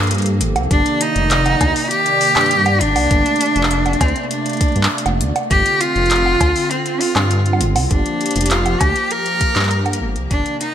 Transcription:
Already playing: G2 F3 A#3 G4 A4
0.03 closed hi-hat
0.07 closed hi-hat
0.11 closed hi-hat
0.15 closed hi-hat
0.18 closed hi-hat
0.22 closed hi-hat
0.26 closed hi-hat
0.41 G1, closed hi-hat
0.56 C2, closed hi-hat, high bongo
0.71 G1 C3 D#3 D4 D5, kick, closed hi-hat
0.86 closed hi-hat
1.01 D#4, closed hi-hat
1.16 F1, closed hi-hat
1.31 clap, closed hi-hat
1.46 closed hi-hat, high bongo
1.49 high bongo
1.53 high bongo
1.57 D2, closed hi-hat, cowbell, high bongo
1.61 kick, high bongo
1.64 high bongo
1.68 high bongo
1.72 open hi-hat, high bongo
1.91 G4, closed hi-hat
2.06 closed hi-hat
2.21 open hi-hat
2.36 G2, clap, closed hi-hat, cowbell
2.41 closed hi-hat
2.46 closed hi-hat
2.51 closed hi-hat
2.66 closed hi-hat, high bongo
2.81 G1 D4, closed hi-hat
2.96 C2, open hi-hat, high bongo
3.11 G1 C3 A3, kick, closed hi-hat
3.26 closed hi-hat
3.36 closed hi-hat
3.41 closed hi-hat
3.56 F1, closed hi-hat
3.63 clap
3.71 closed hi-hat
3.86 closed hi-hat, high bongo
3.93 closed hi-hat
4.01 D2 C4, kick, closed hi-hat, cowbell
4.08 closed hi-hat
4.16 closed hi-hat
4.31 D4, closed hi-hat
4.46 closed hi-hat
4.50 closed hi-hat
4.53 closed hi-hat
4.57 closed hi-hat
4.61 kick, closed hi-hat
4.64 closed hi-hat
4.68 closed hi-hat
4.72 closed hi-hat
4.76 G2, closed hi-hat
4.83 clap
4.98 closed hi-hat
5.06 F1, closed hi-hat, high bongo
5.21 D2, closed hi-hat
5.36 closed hi-hat, high bongo
5.51 G1 D3 C4 F4 G4, kick, closed hi-hat
5.66 closed hi-hat
5.81 F4, closed hi-hat
5.96 F1, closed hi-hat
6.06 closed hi-hat
6.11 clap, closed hi-hat
6.16 closed hi-hat
6.26 high bongo
6.41 D2, kick, closed hi-hat, cowbell
6.56 open hi-hat
6.71 C4, closed hi-hat
6.86 closed hi-hat
7.01 F4, open hi-hat
7.16 G2, clap, closed hi-hat, cowbell
7.31 closed hi-hat
7.46 closed hi-hat
7.53 high bongo
7.61 G1, closed hi-hat
7.76 C2, open hi-hat, high bongo
7.91 G1 F3 A#3 D4 G4, kick, closed hi-hat
8.06 closed hi-hat
8.21 closed hi-hat
8.26 closed hi-hat
8.31 closed hi-hat
8.36 F1, closed hi-hat
8.41 closed hi-hat
8.46 closed hi-hat
8.51 F4, clap, closed hi-hat
8.66 closed hi-hat, high bongo
8.81 D2 G4, kick, closed hi-hat, cowbell
8.96 closed hi-hat
9.11 A#4, closed hi-hat
9.26 closed hi-hat
9.41 kick, closed hi-hat
9.56 G2, clap, closed hi-hat
9.60 clap
9.63 clap
9.67 clap, closed hi-hat
9.86 closed hi-hat, high bongo
9.93 closed hi-hat
10.01 G1
10.16 C2, closed hi-hat
10.31 G1 C3 D#3 D4 D5, kick, closed hi-hat
10.46 closed hi-hat
10.61 D#4, closed hi-hat

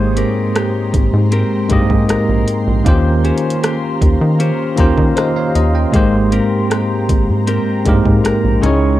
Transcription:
Already playing: G#1 G#2 G#3 A#3 G4 G#4 C5 D#5 G5 A#5 C6
0.17 C4 G4 A#4, closed hi-hat
0.55 G4, cross-stick, closed hi-hat
0.94 G#1, kick, closed hi-hat
1.14 G#2
1.32 C4 G4 A#4, closed hi-hat
1.69 G2 G#2 G#3 A#3 G4, kick, closed hi-hat
1.73 D#5
1.90 G#2, kick
2.09 A#1 A#4, cross-stick, closed hi-hat
2.29 A#1
2.48 closed hi-hat
2.67 A#1
2.84 D#2 D#3 A#3 C#4 F4 G4 F5 A#5, kick, closed hi-hat
2.88 C5
3.24 C#4 G4 C5, closed hi-hat
3.37 closed hi-hat
3.50 closed hi-hat
3.63 G4, cross-stick, closed hi-hat
4.02 D#2, kick, closed hi-hat
4.21 D#3
4.40 C#4 G4 C5, closed hi-hat
4.76 D#2 D#3 A#3 C#4 F4 G4 A#5, kick, closed hi-hat
4.80 C5
4.98 D#3, kick
5.17 C5 D#5 F5, cross-stick, closed hi-hat
5.36 C#5 F5
5.55 D#2 D#5, closed hi-hat
5.75 D#5 G5
5.92 G#1 G#2 G#3 A#3 G4 G5 A#5, kick, closed hi-hat
5.96 C5
6.32 C4 G4 A#4, closed hi-hat
6.70 G4, cross-stick, closed hi-hat
7.09 G#1, kick, closed hi-hat
7.29 G#2
7.47 C4 G4 A#4, closed hi-hat
7.84 G2 G#2 G#3 A#3 G4, kick, closed hi-hat
7.89 A#4
8.05 G#2, kick
8.24 A#1 A#4, cross-stick, closed hi-hat
8.44 A#1
8.61 C#2 C#3 G#3 C#4 D#4 E4 D#5 C#6 D#6, closed hi-hat
8.66 C#5

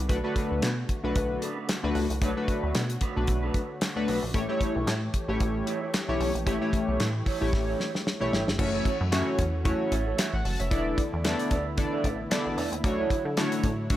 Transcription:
Already playing: D3 B3
0.09 B1 A3 D4 F#4 B4, muted clean electric guitar stroke, kick, closed hi-hat
0.24 A3 D4 F#4 A4 B4
0.36 D4 A4 B4, kick, closed hi-hat
0.51 D2, muted clean electric guitar stroke
0.62 B2, snare, clap, closed hi-hat
0.77 muted clean electric guitar stroke
0.89 kick, closed hi-hat
1.03 B1 A3 D4 F#4 B4
1.15 B1, muted clean electric guitar stroke, kick, closed hi-hat
1.30 muted clean electric guitar stroke
1.42 D4 A4 B4, closed hi-hat
1.57 D4 A4 B4
1.69 muted clean electric guitar stroke, snare, clap, closed hi-hat
1.83 D2 A3 D4 F#4 B4, muted clean electric guitar stroke
1.95 C#2, open hi-hat
2.10 C2, muted clean electric guitar stroke, closed hi-hat
2.21 B1 A3 D4 F#4 A4 B4 C#5, kick, closed hi-hat
2.37 A3 D4 F#4 B4, muted clean electric guitar stroke
2.48 kick, closed hi-hat
2.63 D2 D4 A4 B4
2.75 B2, snare, clap, closed hi-hat
2.89 muted clean electric guitar stroke, closed hi-hat
3.01 D4 A4 B4, kick, closed hi-hat
3.15 B1 A3 D4 F#4 B4, muted clean electric guitar stroke
3.27 B1, muted clean electric guitar stroke, kick, closed hi-hat
3.43 D4 A4 B4
3.54 D4 A4 B4, kick, closed hi-hat
3.69 muted clean electric guitar stroke
3.81 snare, clap, closed hi-hat
3.96 D2 A3 D4 F#4 B4, muted clean electric guitar stroke
4.07 B1 D4 A4 B4, open hi-hat
4.22 A#1, muted clean electric guitar stroke
4.34 A1 E3 A3 E4 G4 C#5, muted clean electric guitar stroke, kick, closed hi-hat
4.48 A3 E4 G4 C#5
4.60 E4 G4 C#5, kick, closed hi-hat
4.75 B1, muted clean electric guitar stroke
4.87 A2, muted clean electric guitar stroke, snare, clap, closed hi-hat
5.02 muted clean electric guitar stroke
5.14 kick, closed hi-hat
5.28 A1 A3 E4 G4 C#5, muted clean electric guitar stroke
5.40 A1, kick, closed hi-hat
5.55 muted clean electric guitar stroke
5.66 E4 G4 C#5, closed hi-hat
5.81 E4 G4 C#5
5.93 muted clean electric guitar stroke, snare, clap, closed hi-hat
6.08 B1 A3 E4 G4 C#5, muted clean electric guitar stroke
6.20 B1, open hi-hat
6.35 A#1, muted clean electric guitar stroke, closed hi-hat
6.46 A1 A3 E4 G4 C#5 E5, kick, closed hi-hat
6.61 A3 E4 G4 C#5, muted clean electric guitar stroke
6.73 muted clean electric guitar stroke, kick, closed hi-hat
6.88 B1 E4 G4 C#5
7.00 A2, snare, clap, closed hi-hat
7.14 muted clean electric guitar stroke
7.25 E4 G4 C#5, kick, open hi-hat
7.41 A1 A3 E4 G4 C#5, muted clean electric guitar stroke
7.53 A1, kick, snare
7.67 E4 G4 C#5
7.79 E4 G4 C#5, snare
7.94 muted clean electric guitar stroke, snare
8.07 snare
8.20 B1 A3 E4 G4 C#5, muted clean electric guitar stroke
8.32 G#1 E4 G4 C#5, snare
8.47 G1, muted clean electric guitar stroke, snare
8.58 F#1 E3 A3 C#4 E4 F#4 C#5, muted clean electric guitar stroke, kick, crash
8.74 E4 A4 C#5
8.85 E4 A4 C#5, kick, closed hi-hat
9.00 F#2, muted clean electric guitar stroke
9.11 A3 C#4 E4 F#4 C#5, muted clean electric guitar stroke, snare, clap, closed hi-hat
9.27 muted clean electric guitar stroke
9.39 E2, kick, closed hi-hat
9.53 muted clean electric guitar stroke
9.64 A3 C#4 E4 F#4 C#5, muted clean electric guitar stroke, kick, closed hi-hat
9.80 muted clean electric guitar stroke
9.91 A1 E4 A4 C#5, closed hi-hat
10.06 E4 A4 C#5
10.18 C#5 E5, muted clean electric guitar stroke, snare, clap, closed hi-hat
10.33 A1 F#5, muted clean electric guitar stroke
10.45 F#1 F#5 A5, open hi-hat
10.59 F1 C#5 E5, muted clean electric guitar stroke, closed hi-hat
10.70 D3 A3 B3 D4 E4 A4 D5 E5, kick, closed hi-hat
10.86 muted clean electric guitar stroke
10.98 kick, closed hi-hat
11.13 E2 E4 A4 D5
11.24 B3 D4 E4 A4 D5, snare, clap, closed hi-hat
11.39 muted clean electric guitar stroke, closed hi-hat
11.51 D2 E4 A4 D5, kick, closed hi-hat
11.66 muted clean electric guitar stroke
11.77 B3 D4 E4 A4 D5, muted clean electric guitar stroke, kick, closed hi-hat
11.92 E4 A4 D5
12.04 A1 E4 A4 D5, kick, closed hi-hat
12.19 muted clean electric guitar stroke
12.31 B3 D4 E4 A4 D5, snare, clap, closed hi-hat
12.46 A1
12.57 E2 E4 A4 D5, open hi-hat
12.72 D#2, muted clean electric guitar stroke, closed hi-hat
12.84 D2 F#3 A3 D4 E4 F#4 C#5, kick, closed hi-hat
12.98 E4 F#4 C#5
13.10 E4 F#4 C#5, kick, closed hi-hat
13.25 D3, muted clean electric guitar stroke
13.37 A3 D4 E4 F#4 C#5, muted clean electric guitar stroke, snare, clap, closed hi-hat
13.52 muted clean electric guitar stroke, closed hi-hat
13.63 A2, kick, closed hi-hat
13.78 muted clean electric guitar stroke
13.90 A3 D4 E4 F#4 C#5, muted clean electric guitar stroke, kick, closed hi-hat

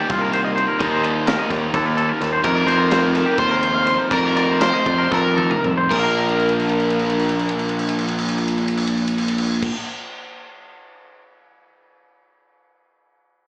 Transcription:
Already playing: D#3 G3 A#3 D#4
0.00 G4
0.10 C2 F4, kick, snare, ride
0.21 A#4
0.33 C5, ride
0.44 D#5
0.56 C5, ride
0.68 A#4
0.79 D#2 D#3 G3 A#3 D#4 D5, kick, ride
0.92 C5
1.03 D5, ride
1.15 C5
1.27 A#4, snare, ride
1.39 D#5
1.50 D#2 D5, kick, snare, ride
1.62 A#4
1.74 D#2 A4, kick, ride
1.86 A#4
1.97 A4, ride
2.09 A#4
2.21 D#2 A4, snare, ride
2.33 C5
2.44 F2 C3 D#3 A3 D#4 A#4, kick, ride
2.55 D5
2.67 F2 C5, snare, ride
2.78 F4
2.90 C5, snare, ride
3.02 A#4
3.14 A4, snare, ride
3.26 G4
3.38 D#2 F4 C5, kick, ride
3.51 A#4
3.62 C5, ride
3.74 F5
3.87 C5, snare, ride
3.98 A#4
4.10 F2 C3 D#3 A3 D#4 A#4 D5, kick, ride
4.24 A#4
4.36 D5, snare, ride
4.48 C5
4.61 A#4 C5, snare, ride
4.73 D#5
4.86 F2 D5, kick, ride
4.98 A#4
5.11 F2 A4 A#4, kick, snare
5.24 A#4
5.37 A4, high tom
5.51 A#4, mid tom
5.64 F2 A4, mid tom
5.78 C5
5.91 A#1 A#2 F3 A#3 A#4, kick, crash
5.95 D4 D5
5.99 F5
6.04 A#5
6.19 crash
6.29 ride
6.40 crash
6.49 ride
6.59 crash
6.69 ride
6.80 crash
6.90 ride
6.99 crash
7.10 ride
7.19 crash
7.29 ride
7.39 crash
7.49 ride
7.59 crash
7.69 ride
7.79 crash
7.89 ride
7.99 crash
8.08 ride
8.19 crash
8.29 ride
8.38 crash
8.48 ride
8.58 crash
8.68 ride
8.77 crash
8.87 ride
8.97 crash
9.08 ride
9.18 crash
9.28 ride
9.38 crash
9.63 kick, crash

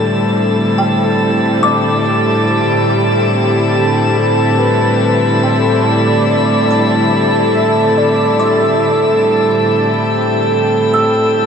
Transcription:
Already playing: A2 D3 G3 C4 E4 A4 D5 A5
0.78 G5
1.63 D6
2.92 G4
3.33 G4
4.17 A4
4.58 B4
5.43 C5 G5
5.86 D5
6.71 B5
7.53 E5
7.97 D5
8.39 E5 C6 D6
9.25 G5
10.94 E6

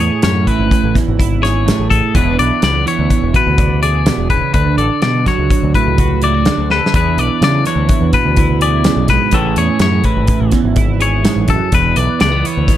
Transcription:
Already playing: A2 E3
0.00 G#4 C#5
0.22 F#2 C#4 C#5, snare, closed hi-hat
0.47 E3 B4, kick, closed hi-hat
0.59 G#1
0.71 kick, closed hi-hat
0.84 A1
0.95 E2, kick, snare, closed hi-hat
1.08 G#1
1.19 E4, kick, closed hi-hat
1.42 G#4 C#5, snare, closed hi-hat
1.66 A2, snare, closed hi-hat
1.79 A1
1.90 G#4 A4, kick, closed hi-hat
2.14 E1 E2 E3 B3 D4 G#4 B4, kick, closed hi-hat
2.39 B1 B4 D5, closed hi-hat
2.62 C#2 B3 D5, snare, closed hi-hat
2.86 E3 C#5, closed hi-hat
2.99 D2
3.10 kick, closed hi-hat
3.22 E1
3.34 B2 B4, kick, closed hi-hat
3.47 D2
3.58 D4, kick, closed hi-hat
3.83 G#4 D5, closed hi-hat
4.06 B2, snare, closed hi-hat
4.18 E1
4.30 C#3 B4, kick, closed hi-hat
4.54 D2 D3 B4, kick, closed hi-hat
4.77 A1 A4 D5, closed hi-hat
5.02 B2 D5, snare, closed hi-hat
5.26 F#3 C#5, kick, snare, closed hi-hat
5.38 C#2
5.50 kick, closed hi-hat
5.63 D2
5.75 A2 B4, kick, closed hi-hat
5.87 C#2
5.98 F#4, kick, closed hi-hat
6.22 E4 D5, closed hi-hat
6.34 F#4
6.45 D3, snare, closed hi-hat
6.58 D2
6.70 A4 B4, snare
6.86 snare
6.94 E2 E3 D4 E4 G#4 B4, kick, closed hi-hat
7.17 B1 B4 D5, closed hi-hat
7.41 C#3 D4 D5, snare, closed hi-hat
7.65 E3 C#5, snare, closed hi-hat
7.76 D2
7.89 kick, closed hi-hat
8.01 E2
8.13 B2 B4, kick, closed hi-hat
8.25 D2
8.37 E4, kick, closed hi-hat
8.61 G#4 D5, closed hi-hat
8.84 F#2, snare, closed hi-hat
8.97 B1
9.08 G#2 B4, kick, snare, closed hi-hat
9.31 A1 A2 E3 C#4 A4, kick, closed hi-hat
9.36 E4 G#4
9.56 E2 G#4 C#5, closed hi-hat
9.79 F#2 C#4 C#5, snare, closed hi-hat
10.04 E3 B4, kick, closed hi-hat
10.17 G#1
10.27 kick, closed hi-hat
10.40 A1
10.51 E2, kick, snare, closed hi-hat
10.64 G#1
10.76 E4, kick, closed hi-hat
11.00 G#4 C#5, closed hi-hat
11.23 G#2, snare, closed hi-hat
11.36 A1
11.48 F#2 A4, kick, closed hi-hat
11.72 E1 E2 B4, kick, closed hi-hat
11.96 B1 B4 D5, closed hi-hat
12.19 C#2 A3 D5, snare, closed hi-hat
12.32 B3
12.43 E3 C#5, closed hi-hat
12.57 D2
12.68 kick, snare, closed hi-hat

